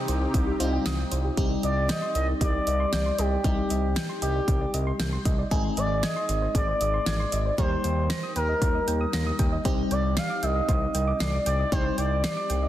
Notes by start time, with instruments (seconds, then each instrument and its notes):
Already playing: analog synth pad C3 C4 D#4 G4, fm electric piano G3 C4 D#4 G4
0.08 analog synth bass C2, synth pluck C5, closed hi-hat
0.21 synth pluck G4
0.34 analog synth bass C2, synth pluck D#4, kick, closed hi-hat
0.47 synth pluck G4
0.60 analog synth bass C2, fm electric piano G3 C4 D#4 F4, synth pluck C5, closed hi-hat
0.73 synth pluck G5
0.86 analog synth bass C2, synth pluck D#6, snare, closed hi-hat
0.99 synth pluck G5
1.12 analog synth bass C2, synth pluck C5, closed hi-hat
1.25 synth pluck G4
1.37 analog synth bass C2, fm electric piano G3 C4 D#4 G4, synth pluck G4, kick, closed hi-hat
1.63 analog synth bass C2, analog synth lead D5, synth pluck D#5, closed hi-hat
1.89 analog synth lead D#5, synth pluck G6, snare, closed hi-hat
2.02 synth pluck C6
2.15 analog synth bass C2, analog synth lead D#5, synth pluck D#5, closed hi-hat
2.28 synth pluck D5
2.41 analog synth bass C2, synth pluck G4, analog synth lead D5, kick, closed hi-hat
2.54 synth pluck D5
2.67 analog synth bass C2, synth pluck D#5, closed hi-hat
2.80 synth pluck C6
2.93 analog synth bass C2, synth pluck G6, snare, closed hi-hat
3.06 synth pluck C6
3.18 analog synth bass C2, analog synth lead G4, synth pluck D#5, closed hi-hat
3.32 synth pluck D5
3.44 analog synth bass C2, fm electric piano G3 C4 D#4 G4, synth pluck G4, kick, closed hi-hat
3.70 analog synth bass C2, synth pluck D#5, closed hi-hat
3.96 synth pluck G6, snare, closed hi-hat
4.09 synth pluck C6
4.22 analog synth bass C2, analog synth lead G4, synth pluck D#5, closed hi-hat
4.35 synth pluck D5
4.48 analog synth bass C2, synth pluck G4, kick, closed hi-hat
4.61 synth pluck D5
4.74 analog synth bass C2, synth pluck D#5, closed hi-hat
4.87 synth pluck C6
5.00 analog synth bass C2, synth pluck G6, snare, closed hi-hat
5.13 synth pluck C6
5.25 analog synth bass C2, synth pluck D#5, kick, closed hi-hat
5.39 synth pluck D5
5.51 analog synth bass G#1, fm electric piano G#3 C4 D#4 G#4, synth pluck G#4, kick, closed hi-hat
5.77 analog synth bass G#1, analog synth lead D5, synth pluck D#5, closed hi-hat
6.03 analog synth lead D#5, synth pluck G#6, snare, closed hi-hat
6.16 synth pluck C6
6.29 analog synth bass G#1, synth pluck D#5, closed hi-hat
6.42 synth pluck C5
6.55 analog synth bass G#1, synth pluck G#4, analog synth lead D5, kick, closed hi-hat
6.68 synth pluck C5
6.81 analog synth bass G#1, synth pluck D#5, closed hi-hat
6.94 synth pluck C6
7.06 analog synth bass G#1, synth pluck G#6, snare, closed hi-hat
7.20 synth pluck C6
7.32 analog synth bass G#1, synth pluck D#5, closed hi-hat
7.46 synth pluck C5
7.58 analog synth bass D#2, fm electric piano G3 A#3 D#4 G4, synth pluck A#4, analog synth lead C5, kick, closed hi-hat
7.84 analog synth bass D#2, synth pluck G5, closed hi-hat
8.10 synth pluck A#6, snare, closed hi-hat
8.23 synth pluck D#6
8.36 analog synth bass D#2, analog synth lead A#4, synth pluck G5, closed hi-hat
8.49 synth pluck D#5
8.62 analog synth bass D#2, synth pluck A#4, kick, closed hi-hat
8.75 synth pluck D#5
8.88 analog synth bass D#2, synth pluck G5, closed hi-hat
9.01 synth pluck D#6
9.13 analog synth bass D#2, synth pluck A#6, snare, closed hi-hat
9.27 synth pluck D#6
9.39 analog synth bass D#2, synth pluck G5, kick, closed hi-hat
9.52 synth pluck D#5
9.65 analog synth bass C2, fm electric piano G3 C4 D#4 G4, synth pluck C5, kick, closed hi-hat
9.91 analog synth bass C2, analog synth lead D5, synth pluck G5, closed hi-hat
10.17 analog synth lead F5, synth pluck C7, snare, closed hi-hat
10.30 synth pluck D6
10.43 analog synth bass C2, analog synth lead D#5, synth pluck G5, closed hi-hat
10.56 synth pluck D#5
10.69 analog synth bass C2, synth pluck C5, kick, closed hi-hat
10.82 synth pluck D#5
10.94 analog synth bass C2, synth pluck G5, closed hi-hat
11.07 synth pluck D6
11.20 analog synth bass C2, analog synth lead D5, synth pluck C7, snare, closed hi-hat
11.33 synth pluck D6
11.46 analog synth bass C2, analog synth lead D5, synth pluck G5, closed hi-hat
11.59 synth pluck D#5
11.72 analog synth bass C2, fm electric piano G3 C4 D#4 G4, synth pluck C5, analog synth lead C5, kick, closed hi-hat
11.98 analog synth bass C2, analog synth lead D5, synth pluck G5, closed hi-hat
12.24 synth pluck C7, snare, closed hi-hat
12.37 synth pluck D6
12.50 analog synth bass C2, synth pluck G5, closed hi-hat
12.63 synth pluck D#5